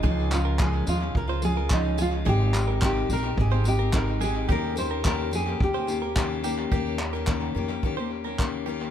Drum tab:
TB |-x-x-x-x|-x-x-x-x|-x-x-x-x|--------|
CP |-xx---x-|-xx---x-|--x---x-|-xx---x-|
BD |o-o-o-o-|o-o-o-o-|o-o-o-o-|o-o-o-o-|